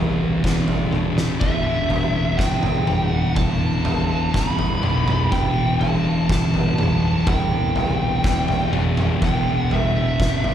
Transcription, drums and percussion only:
0.44 kick loud
0.44 snare medium
0.68 floor tom medium
0.93 high tom medium
1.18 snare medium
1.41 kick loud
1.41 floor tom medium
1.90 floor tom medium
2.39 kick loud
2.39 snare medium
2.63 floor tom medium
2.87 mid tom medium
3.36 kick loud
3.36 floor tom medium
3.36 mid tom medium
3.85 floor tom loud
4.34 kick loud
4.34 snare medium
4.59 floor tom medium
4.83 mid tom medium
5.08 mid tom medium
5.32 kick loud
5.32 floor tom medium
5.81 floor tom medium
6.29 kick loud
6.29 snare medium
6.54 floor tom medium
6.78 mid tom medium
7.27 kick loud
7.27 floor tom medium
7.27 mid tom medium
7.76 floor tom medium
8.24 kick loud
8.24 snare medium
8.48 floor tom loud
8.73 mid tom medium
8.97 mid tom medium
9.22 kick loud
9.22 floor tom medium
9.71 floor tom medium
10.20 kick loud
10.20 snare medium
10.44 floor tom medium

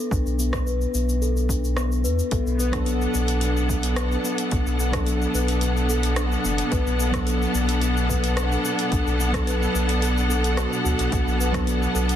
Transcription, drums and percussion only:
0.11 kick loud
0.11 shaker soft
0.26 shaker soft
0.39 shaker medium
0.53 kick loud
0.53 cross-stick medium
0.53 shaker soft
0.67 shaker soft
0.81 shaker soft
0.95 shaker medium
1.09 shaker soft
1.22 shaker soft
1.37 shaker soft
1.49 kick medium
1.49 shaker medium
1.64 shaker soft
1.77 cross-stick medium
1.77 shaker soft
1.92 shaker soft
2.05 shaker medium
2.19 shaker soft
2.31 kick loud
2.31 closed hi-hat soft
2.31 shaker soft
2.47 shaker soft
2.60 shaker medium
2.73 kick loud
2.73 cross-stick medium
2.73 closed hi-hat medium
2.73 shaker soft
2.86 closed hi-hat soft
2.86 shaker soft
3.02 shaker soft
3.15 shaker medium
3.28 closed hi-hat medium
3.28 shaker soft
3.41 closed hi-hat soft
3.41 shaker soft
3.57 shaker soft
3.69 kick medium
3.69 shaker medium
3.83 closed hi-hat medium
3.83 shaker soft
3.96 cross-stick medium
3.96 closed hi-hat soft
3.96 shaker soft
4.12 shaker soft
4.25 shaker medium
4.38 closed hi-hat medium
4.38 shaker soft
4.51 kick loud
4.51 closed hi-hat soft
4.51 shaker soft
4.67 shaker soft
4.80 shaker medium
4.93 kick loud
4.93 cross-stick medium
4.93 closed hi-hat medium
4.93 shaker soft
5.06 closed hi-hat soft
5.06 shaker soft
5.22 shaker soft
5.35 shaker medium
5.48 closed hi-hat medium
5.48 shaker soft
5.61 closed hi-hat soft
5.61 shaker soft
5.77 shaker soft
5.90 shaker medium
6.03 closed hi-hat medium
6.03 shaker soft
6.16 cross-stick medium
6.16 closed hi-hat soft
6.16 shaker soft
6.32 shaker soft
6.45 shaker medium
6.58 closed hi-hat medium
6.58 shaker soft
6.72 kick loud
6.72 closed hi-hat soft
6.72 shaker soft
6.87 shaker soft
7.00 shaker medium
7.14 kick loud
7.14 cross-stick medium
7.14 closed hi-hat medium
7.14 shaker soft
7.27 closed hi-hat soft
7.27 shaker soft
7.42 shaker soft
7.55 shaker medium
7.69 closed hi-hat medium
7.69 shaker soft
7.81 closed hi-hat soft
7.81 shaker soft
7.97 shaker soft
8.09 kick medium
8.09 shaker medium
8.24 closed hi-hat medium
8.24 shaker soft
8.37 cross-stick medium
8.37 closed hi-hat soft
8.37 shaker soft
8.52 shaker soft
8.65 shaker medium
8.79 closed hi-hat medium
8.79 shaker soft
8.92 kick loud
8.92 closed hi-hat soft
8.92 shaker soft
9.07 shaker soft
9.20 shaker medium
9.34 kick loud
9.34 cross-stick medium
9.34 closed hi-hat soft
9.34 shaker soft
9.47 closed hi-hat soft
9.47 shaker soft
9.63 shaker soft
9.76 shaker medium
9.89 closed hi-hat soft
9.89 shaker soft
10.02 closed hi-hat soft
10.02 shaker soft
10.17 shaker soft
10.31 shaker medium
10.44 closed hi-hat soft
10.44 shaker soft
10.57 cross-stick medium
10.57 closed hi-hat soft
10.57 shaker soft
10.73 shaker soft
10.86 shaker medium
10.99 closed hi-hat medium
10.99 shaker soft
11.12 kick loud
11.12 closed hi-hat soft
11.12 shaker soft
11.28 shaker soft
11.41 shaker medium
11.54 kick loud
11.54 cross-stick medium
11.54 closed hi-hat medium
11.54 shaker soft
11.67 closed hi-hat soft
11.67 shaker soft
11.83 shaker soft
11.96 shaker medium
12.09 closed hi-hat soft
12.09 shaker soft

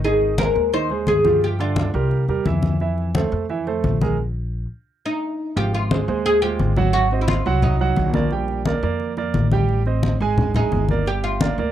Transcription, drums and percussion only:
0.04 high conga soft
0.21 high conga soft
0.38 high conga medium
0.56 high conga soft
0.73 high conga soft
0.90 high conga soft
1.07 high conga medium
1.25 high conga medium
1.42 high conga soft
1.59 high conga soft
1.76 high conga medium
1.94 high conga soft
2.11 high conga soft
2.29 high conga soft
2.46 high conga medium
2.63 high conga medium
2.80 high conga soft
2.98 high conga soft
3.15 high conga medium
3.32 high conga soft
3.49 high conga soft
3.67 high conga soft
3.84 high conga medium
4.01 high conga medium
5.56 high conga soft
5.74 high conga soft
5.91 high conga medium
6.08 high conga soft
6.26 high conga soft
6.43 high conga soft
6.59 high conga medium
6.76 high conga medium
6.94 high conga soft
7.11 high conga soft
7.28 high conga medium
7.46 high conga soft
7.62 high conga soft
7.62 low conga medium
7.80 high conga soft
7.96 high conga medium
8.14 high conga medium
8.31 high conga soft
8.48 high conga soft
8.66 high conga medium
8.83 high conga soft
9.00 high conga soft
9.17 high conga soft
9.34 high conga medium
9.51 high conga medium
9.69 high conga soft
9.86 high conga soft
10.03 high conga medium
10.21 high conga soft
10.38 high conga soft
10.38 low conga medium
10.54 high conga soft
10.54 low conga medium
10.72 high conga medium
10.89 high conga medium
11.06 high conga soft
11.24 high conga soft
11.41 high conga medium
11.58 high conga soft

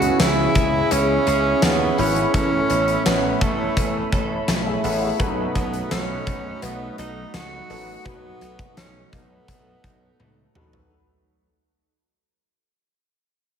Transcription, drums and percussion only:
0.02 closed hi-hat medium
0.20 snare loud
0.20 closed hi-hat loud
0.20 tambourine medium
0.20 cowbell medium
0.55 kick medium
0.55 closed hi-hat medium
0.91 closed hi-hat medium
0.91 cowbell medium
1.27 closed hi-hat medium
1.62 snare loud
1.62 closed hi-hat medium
1.62 tambourine medium
1.62 cowbell medium
1.98 open hi-hat medium
2.16 closed hi-hat medium
2.34 kick loud
2.34 closed hi-hat medium
2.34 cowbell medium
2.70 closed hi-hat medium
2.88 closed hi-hat medium
3.06 snare loud
3.06 closed hi-hat loud
3.06 tambourine medium
3.06 cowbell medium
3.41 kick medium
3.41 closed hi-hat medium
3.77 kick medium
3.77 closed hi-hat loud
3.77 cowbell medium
4.12 kick medium
4.12 closed hi-hat medium
4.48 snare loud
4.48 closed hi-hat loud
4.48 tambourine medium
4.48 cowbell medium
4.84 open hi-hat medium
5.20 kick medium
5.20 closed hi-hat medium
5.20 cowbell medium
5.55 kick medium
5.55 closed hi-hat medium
5.74 closed hi-hat medium
5.91 snare loud
5.91 closed hi-hat loud
5.91 tambourine medium
5.91 cowbell medium
6.27 kick medium
6.27 closed hi-hat medium
6.62 closed hi-hat medium
6.62 cowbell medium
6.98 closed hi-hat medium
7.34 snare loud
7.34 closed hi-hat medium
7.34 tambourine medium
7.34 cowbell medium
7.70 open hi-hat medium
8.05 kick loud
8.05 closed hi-hat medium
8.05 cowbell medium
8.41 closed hi-hat medium
8.59 kick loud
8.59 closed hi-hat medium
8.77 snare loud
8.77 closed hi-hat loud
8.77 tambourine medium
8.77 cowbell medium
9.13 kick medium
9.13 closed hi-hat medium
9.48 kick medium
9.48 closed hi-hat loud
9.48 cowbell medium
9.84 kick medium
9.84 closed hi-hat medium
10.20 high tom medium
10.20 cowbell medium
10.55 mid tom loud
10.73 floor tom medium

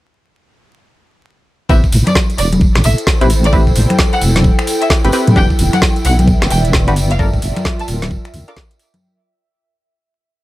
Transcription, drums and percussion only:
1.69 kick loud
1.69 tambourine medium
1.84 kick medium
1.84 tambourine soft
1.92 open hi-hat loud
1.92 tambourine loud
2.07 finger snap soft
2.07 closed hi-hat medium
2.07 tambourine soft
2.07 high conga medium
2.15 kick loud
2.15 snare loud
2.15 tambourine medium
2.30 closed hi-hat soft
2.30 tambourine soft
2.38 open hi-hat loud
2.38 tambourine medium
2.52 closed hi-hat medium
2.52 tambourine soft
2.52 high conga medium
2.60 kick loud
2.60 tambourine soft
2.75 finger snap medium
2.75 snare medium
2.75 closed hi-hat soft
2.75 tambourine soft
2.84 open hi-hat loud
2.84 tambourine medium
2.98 closed hi-hat medium
2.98 tambourine soft
3.07 kick loud
3.07 snare loud
3.07 tambourine medium
3.21 closed hi-hat medium
3.21 tambourine soft
3.30 open hi-hat loud
3.30 tambourine medium
3.44 closed hi-hat medium
3.44 tambourine soft
3.53 kick loud
3.53 tambourine soft
3.67 kick medium
3.67 tambourine soft
3.75 open hi-hat loud
3.75 tambourine medium
3.90 finger snap soft
3.90 closed hi-hat medium
3.90 tambourine soft
3.90 high conga medium
3.98 kick loud
3.98 snare loud
3.98 tambourine medium
4.13 closed hi-hat soft
4.13 tambourine soft
4.21 open hi-hat loud
4.21 tambourine loud
4.35 snare medium
4.35 closed hi-hat medium
4.35 tambourine soft
4.35 high conga medium
4.44 kick loud
4.44 tambourine medium
4.59 finger snap medium
4.59 closed hi-hat soft
4.59 tambourine soft
4.67 open hi-hat loud
4.67 tambourine loud
4.81 closed hi-hat medium
4.81 tambourine soft
4.90 kick loud
4.90 snare loud
4.90 tambourine medium
5.05 closed hi-hat medium
5.05 tambourine soft
5.12 open hi-hat loud
5.12 tambourine loud
5.27 closed hi-hat medium
5.27 tambourine soft
5.27 high conga medium
5.36 kick loud
5.36 tambourine medium
5.50 kick medium
5.50 tambourine soft
5.59 open hi-hat loud
5.59 tambourine loud
5.73 finger snap soft
5.73 closed hi-hat medium
5.73 tambourine soft
5.73 high conga medium
5.82 kick loud
5.82 snare loud
5.82 tambourine medium
5.96 closed hi-hat soft
5.96 tambourine soft
6.05 open hi-hat medium
6.05 tambourine loud
6.19 closed hi-hat medium
6.19 tambourine soft
6.19 high conga medium
6.28 kick loud
6.28 tambourine medium
6.42 finger snap medium
6.42 snare medium
6.42 closed hi-hat soft
6.42 tambourine soft
6.51 open hi-hat loud
6.51 tambourine medium
6.64 closed hi-hat medium
6.64 tambourine soft
6.73 kick loud
6.73 snare loud
6.73 tambourine medium
6.87 closed hi-hat medium
6.87 tambourine soft
6.96 open hi-hat medium
6.96 tambourine loud
7.10 closed hi-hat medium
7.10 tambourine soft
7.19 kick loud
7.19 tambourine medium
7.33 kick medium
7.33 tambourine soft
7.42 open hi-hat loud
7.42 tambourine medium
7.56 finger snap soft
7.56 closed hi-hat medium
7.56 tambourine soft
7.56 high conga medium
7.65 kick loud
7.65 snare loud
7.65 tambourine medium
7.79 closed hi-hat soft
7.79 tambourine soft
7.88 open hi-hat medium
7.88 tambourine loud
8.02 snare medium
8.02 closed hi-hat medium
8.02 high conga medium
8.11 kick loud
8.11 tambourine medium
8.25 finger snap medium
8.25 closed hi-hat soft
8.25 tambourine soft
8.34 open hi-hat loud
8.34 tambourine loud
8.47 closed hi-hat medium
8.47 tambourine soft
8.57 kick loud
8.57 snare loud
8.57 tambourine medium
8.71 closed hi-hat medium
8.71 tambourine soft
8.79 open hi-hat medium
8.79 tambourine loud
8.94 closed hi-hat medium
8.94 high conga medium

